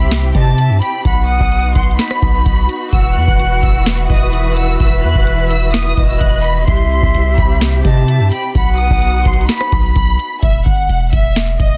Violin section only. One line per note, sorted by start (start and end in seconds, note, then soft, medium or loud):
0.35 0.79 A5 medium
0.82 1.03 B5 medium
1.05 1.27 B5 medium
1.29 1.73 D#6 medium
1.75 1.97 C6 medium
1.99 2.32 B5 medium
2.34 2.89 B5 medium
2.93 3.14 E6 medium
3.16 3.60 F#6 medium
3.63 3.84 E6 medium
4.10 4.54 D#6 medium
4.57 4.78 E6 medium
4.80 5.02 E6 medium
5.04 5.48 F#6 medium
5.51 5.72 E6 medium
5.74 6.07 D#6 loud
6.09 6.20 E6 medium
6.21 6.42 F#6 medium
6.44 6.66 B5 medium
6.67 6.89 C6 loud
6.91 7.35 C6 medium
7.38 7.60 B5 medium
7.85 8.29 A5 medium
8.32 8.53 B5 medium
8.55 8.77 B5 medium
8.79 9.23 D#6 medium
9.26 9.47 C6 medium
9.49 9.82 B5 medium
9.84 10.39 B5 medium
10.43 10.64 E5 medium
10.66 11.10 F#5 medium
11.13 11.34 E5 medium
11.60 11.77 D#5 medium